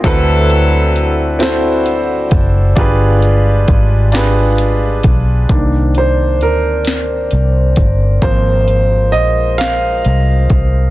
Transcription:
<<
  \new Staff \with { instrumentName = "Grand piano" } { \time 6/8 \key g \phrygian \tempo 4. = 44 <c' e' fis' a' b'>4 r8 <c' e' fis' a' c''>4 r8 | <d' f' g' aes' b'>4 r8 <d' f' g' aes' b'>4 r8 | r8 c''8 bes'2 | c''4 ees''8 f''4 r8 | }
  \new Staff \with { instrumentName = "Grand piano" } { \time 6/8 \key g \phrygian r2. | r2. | <ees bes d'>8 r2 r8 | <f bes c'>8 r2 r8 | }
  \new Staff \with { instrumentName = "French horn section" } { \time 6/8 \key g \phrygian << { d''2.~ | d''2. | c''2. | c''2. | } \\ { <d c' e' fis'>2. | <g aes f'>2. | <c' bes' d''>2. | <aes f' bes'>2. | } >> }
  \new Staff \with { instrumentName = "Horn section" } { \time 6/8 \key g \phrygian <fis e' a'>4. r4. | r2. | r2. | r2. | }
  \new Staff \with { instrumentName = "Fingered electric bass" } { \clef bass \time 6/8 \key g \phrygian d,2~ d,8 fis,,8 | g,,4 aes,,4. b,,8 | c,4 d,4 c,8 g,,8 | aes,,4 bes,,4 c,8 c,8 | }
  \new DrumStaff \with { instrumentName = "Drums" } \drummode { \time 6/8 <hh bd>8 hh8 hh8 <hh sn>8 hh8 <hh bd>8 | <hh bd>8 hh8 <hh bd>8 <hh sn>8 hh8 <hh bd>8 | <hh bd>8 hh8 hh8 <hh sn>8 hh8 <hh bd>8 | <hh bd>8 hh8 hh8 <hh sn>8 hh8 <hh bd>8 | }
>>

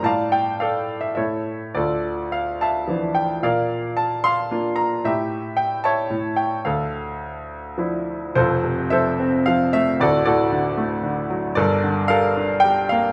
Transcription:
<<
  \new Staff \with { instrumentName = "Grand piano" } { \time 3/4 \key d \minor \tempo 4 = 110 << { a''8 g''8 f''8. e''16 e''8. r16 | d''4 f''8 a''4 g''8 | f''4 a''8 c'''4 bes''8 | e''4 g''8 a''4 g''8 |
f''2~ f''8 r8 | \key f \major c''4 e''4 f''8 e''8 | d''8 d''4. r4 | d''4 f''4 g''8 f''8 | } \\ { <d'' f''>4 <a' d''>4 <a' cis''>4 | <f' a'>4. <e'' f''>4. | <bes' d''>4. f''4. | g'4. <cis'' e''>4. |
a'2~ a'8 r8 | <f' a'>4 <a' c''>4. r8 | <fis' a'>8 <fis' a'>4. r4 | <a' bes'>4 <a' bes'>4. r8 | } >> }
  \new Staff \with { instrumentName = "Grand piano" } { \clef bass \time 3/4 \key d \minor a,2 a,4 | d,2 <e f d'>4 | bes,2 <bes d' f'>4 | a,2 a,4 |
d,2 <f d' e'>4 | \key f \major <f,, f,>8 c8 f8 c'8 f8 a8 | <d,, d,>8 a,8 d8 a8 d8 fis8 | <g,, g,>8 d8 g8 d'8 g8 bes8 | }
>>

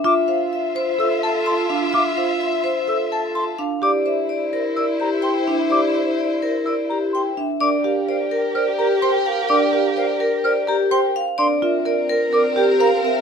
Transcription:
<<
  \new Staff \with { instrumentName = "Flute" } { \time 4/4 \key c \mixolydian \tempo 4 = 127 d'''8 r4. e'''8 a''8 c'''8 r8 | d'''8 r4. e'''8 a''8 c'''8 r8 | d'''8 r4. e'''8 bes''8 c'''8 r8 | d'''8 r4. e'''8 bes''8 c'''8 r8 |
\key g \dorian d'''8 r8 f''8 r8 f'''8 bes''8 c'''8 r8 | d'''8 r8 f''8 r8 f'''8 bes''8 c'''8 r8 | c'''8 r4. d'''8 g''8 bes''8 r8 | }
  \new Staff \with { instrumentName = "Vibraphone" } { \time 4/4 \key c \mixolydian e''8 f''8 e''8 c''8 e''8 a'8 a''8 f''8 | e''8 f''8 e''8 c''8 e''8 a'8 a''8 f''8 | d''8 e''8 d''8 bes'8 d''8 g'8 g''8 e''8 | d''8 e''8 d''8 bes'8 d''8 g'8 g''8 e''8 |
\key g \dorian d''8 f''8 d''8 bes'8 d''8 g'8 g''8 f''8 | d''8 f''8 d''8 bes'8 d''8 g'8 g''8 f''8 | d''8 e''8 d''8 bes'8 d''8 g'8 f''8 e''8 | }
  \new Staff \with { instrumentName = "Alto flute" } { \time 4/4 \key c \mixolydian f'1~ | f'2.~ f'8 r8 | e'1~ | e'2.~ e'8 r8 |
\key g \dorian bes'8 bes'8 bes'8 bes'8 bes'8 bes'8 bes'8 bes'8 | bes'8 bes'8 bes'8 bes'8 bes'8 bes'8 bes'8 r8 | bes'8 bes'8 bes'8 bes'8 bes'8 bes'8 bes'8 bes'8 | }
  \new Staff \with { instrumentName = "Marimba" } { \time 4/4 \key c \mixolydian f'8 c''8 r8 c''8 a'8 r4 d'8 | f'8 c''8 r8 c''8 a'8 r4 d'8 | g'8 c''8 r8 c''8 bes'8 r4 d'8 | g'8 c''8 r8 c''8 bes'8 r4 d'8 |
\key g \dorian d'8 g'8 c''8 r8 c''8 bes'8 c''8 r8 | d'8 g'8 c''8 r8 c''8 bes'8 c''8 r8 | d'8 f'8 bes'8 r8 bes'8 g'8 bes'8 r8 | }
  \new Staff \with { instrumentName = "Violin section" } { \time 4/4 \key c \mixolydian <f' e''>1~ | <f' e''>2.~ <f' e''>8 r8 | <e' c''>1~ | <e' c''>2.~ <e' c''>8 r8 |
\key g \dorian <g' bes'>1~ | <g' bes'>2.~ <g' bes'>8 r8 | <c' bes'>1 | }
>>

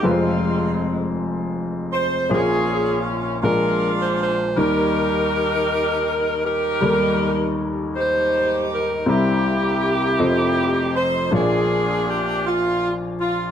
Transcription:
<<
  \new Staff \with { instrumentName = "Saxophone section" } { \time 6/8 \key ees \mixolydian \tempo 4. = 53 << { f'4 r4. c''8 | aes'4 r8 bes'8. c''16 c''8 | bes'2~ bes'8 bes'8~ | bes'4~ bes'16 r16 c''4 bes'8 |
g'2~ g'8 c''8 | aes'4 g'8 f'8. r16 f'8 | } \\ { <aes c'>4. r4. | <des' f'>4. <d' f'>4. | <ees' g'>2~ <ees' g'>8 <ees' g'>8~ | <ees' g'>4 r8 <ees' g'>4. |
<bes e'>2~ <bes e'>8 r8 | <d' f'>4. r4. | } >> }
  \new Staff \with { instrumentName = "Upright piano" } { \time 6/8 \key ees \mixolydian <f,, f, aes c' f' ces'' c''>2. | <bes,, bes, bes des' f' c'' des''>4. <bes,, bes, aes d' f' bes'>4. | <ees, ees g bes ees' bes'>2. | <ees, ees g bes ees' a' bes'>2. |
<c, c g c' e' bes'>4. <f,, f, f a' c'' ees''>4. | <bes,, bes, bes d' f' des'' d''>2. | }
>>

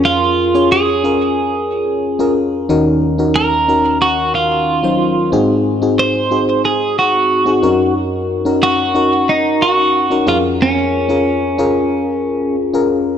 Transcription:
<<
  \new Staff \with { instrumentName = "Clean electric guitar" } { \time 4/4 \key bes \minor \tempo 4 = 91 f'4 aes'2~ aes'8 r8 | r4 bes'4 ges'8 f'4. | r4 c''4 aes'8 ges'4. | r4 ges'4 ees'8 ges'4 f'8 |
des'2. r4 | }
  \new Staff \with { instrumentName = "FM electric piano" } { \time 4/4 \key bes \minor <des' f' aes' bes'>8 r16 <des' f' aes' des''>8 r16 <des' f' aes' bes'>4~ <des' f' aes' bes'>16 r8 <des' f' aes' bes'>8 r16 | <des' ees' ges' bes'>8 r16 <des' ees' ges' bes'>8 r16 <des' ees' ges' bes'>4~ <des' ees' ges' bes'>16 r8 <ges des' ees' c''>8 r16 | <c' ees' ges' aes'>8 r16 <c' ees' ges' aes'>8 r16 <c' ees' ges' aes'>4~ <c' ees' ges' aes'>16 r8 <c' ees' ges' aes'>16 <des' ees' ges' bes'>8~ | <des' ees' ges' bes'>8 r16 <des' ees' ges' bes'>8 r16 <des' ees' ges' bes'>4~ <des' ees' ges' bes'>16 r8 <des' ees' ges' bes'>16 <des' f' aes' bes'>8~ |
<des' f' aes' bes'>8 r16 <des' f' aes' bes'>8 r16 <des' f' aes' bes'>4~ <des' f' aes' bes'>16 r8 <des' f' aes' bes'>8 r16 | }
  \new Staff \with { instrumentName = "FM electric piano" } { \clef bass \time 4/4 \key bes \minor f,2.~ f,8 r8 | <ees, ees>1 | aes,2.~ aes,8 ges,8~ | ges,2.~ ges,8 f,8~ |
f,2.~ f,8 r8 | }
>>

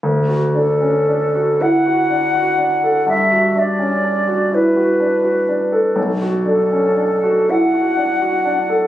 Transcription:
<<
  \new Staff \with { instrumentName = "Flute" } { \time 6/8 \key d \major \tempo 4. = 41 r8 a'4 fis''4. | e''8 d''4 b'4. | r8 a'4 fis''4. | }
  \new Staff \with { instrumentName = "Grand piano" } { \time 6/8 \key d \major d,16 fis'16 d'16 cis'16 d'16 fis'16 e'16 fis'16 d'16 fis'16 d'16 a'16 | g,16 fis'16 d'16 cis'16 d'16 fis'16 e'16 fis'16 d'16 fis'16 d'16 a'16 | b,,16 fis'16 d'16 cis'16 d'16 fis'16 e'16 fis'16 d'16 fis'16 d'16 a'16 | }
>>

